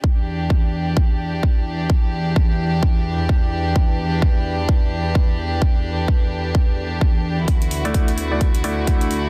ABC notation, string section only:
X:1
M:4/4
L:1/8
Q:"Swing 16ths" 1/4=129
K:Em
V:1 name="String section"
[E,,E,DG]8- | [E,,E,DG]8- | [E,,E,DG]8- | [E,,E,DG]8 |
[D,,D,EF]8 |]